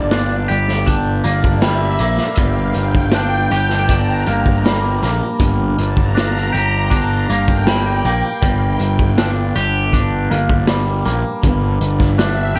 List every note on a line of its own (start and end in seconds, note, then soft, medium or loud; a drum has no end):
0.00 0.46 G1 medium
0.00 2.38 G2 medium
0.00 1.62 G3 medium
0.00 1.24 A#3 medium
0.00 0.11 D4 medium
0.00 0.48 G4 medium
0.11 0.86 D4 medium
0.11 snare loud
0.11 closed hi-hat medium
0.48 1.22 G1 medium
0.48 3.51 G4 medium
0.48 closed hi-hat medium
0.68 snare soft
0.86 3.14 D4 medium
0.86 kick medium
0.86 closed hi-hat medium
1.24 1.96 G1 medium
1.24 2.00 A#3 medium
1.24 closed hi-hat medium
1.43 2.15 E5 medium
1.43 kick medium
1.62 4.65 G3 medium
1.62 snare loud
1.62 closed hi-hat medium
1.99 2.18 A#1 medium
1.99 4.27 A#3 medium
1.99 closed hi-hat medium
2.17 snare soft
2.35 2.72 G1 loud
2.35 5.39 G2 medium
2.35 kick loud
2.35 closed hi-hat medium
2.70 3.71 G5 loud
2.70 closed hi-hat medium
2.75 3.47 G1 medium
2.95 kick medium
3.12 3.90 D4 medium
3.12 snare loud
3.12 closed hi-hat medium
3.12 tambourine medium
3.51 4.23 G1 medium
3.51 6.52 G4 medium
3.51 closed hi-hat medium
3.69 snare soft
3.84 4.58 A#5 loud
3.89 6.15 D4 medium
3.89 kick medium
3.89 closed hi-hat loud
4.26 4.99 G1 medium
4.26 5.03 A#3 medium
4.26 closed hi-hat medium
4.46 kick medium
4.64 7.67 G3 medium
4.64 snare loud
4.64 closed hi-hat medium
4.64 tambourine medium
5.02 5.20 A#1 medium
5.02 7.30 A#3 medium
5.02 snare soft
5.02 closed hi-hat medium
5.40 5.74 G1 medium
5.40 8.41 G2 medium
5.40 kick loud
5.40 closed hi-hat medium
5.78 6.50 G1 medium
5.78 closed hi-hat medium
5.96 6.74 A#5 loud
5.96 kick medium
6.15 6.90 D4 medium
6.15 snare loud
6.15 closed hi-hat medium
6.15 tambourine loud
6.36 snare soft
6.53 7.25 G1 medium
6.53 9.55 G4 medium
6.53 closed hi-hat medium
6.90 9.17 D4 medium
6.90 kick medium
6.90 closed hi-hat medium
7.30 8.01 G1 medium
7.30 8.05 A#3 medium
7.30 8.27 G5 loud
7.30 closed hi-hat medium
7.48 kick medium
7.67 10.68 G3 medium
7.67 snare loud
7.67 closed hi-hat medium
7.67 tambourine loud
8.05 8.22 A#1 medium
8.05 10.30 A#3 medium
8.05 closed hi-hat medium
8.42 8.76 G1 medium
8.42 11.42 G2 medium
8.42 9.15 G5 loud
8.42 kick loud
8.42 closed hi-hat medium
8.79 9.51 G1 medium
8.79 closed hi-hat medium
8.99 kick medium
9.18 9.93 D4 medium
9.18 snare loud
9.18 closed hi-hat loud
9.18 tambourine loud
9.56 10.27 G1 medium
9.56 12.55 G4 medium
9.56 closed hi-hat medium
9.93 12.18 D4 medium
9.93 kick medium
9.93 closed hi-hat loud
10.31 11.02 G1 medium
10.31 11.05 A#3 medium
10.31 closed hi-hat medium
10.49 kick medium
10.67 12.59 G3 medium
10.67 snare loud
10.67 closed hi-hat medium
10.67 tambourine loud
11.05 11.23 A#1 medium
11.05 12.59 A#3 medium
11.05 closed hi-hat medium
11.43 11.78 G1 medium
11.43 12.59 G2 medium
11.43 kick loud
11.43 closed hi-hat medium
11.80 12.52 G1 medium
11.80 closed hi-hat medium
12.00 12.59 E5 loud
12.00 kick medium
12.00 snare soft
12.18 12.59 D4 medium
12.18 snare loud
12.18 closed hi-hat loud
12.18 tambourine loud
12.55 12.59 G1 medium
12.55 12.59 G4 medium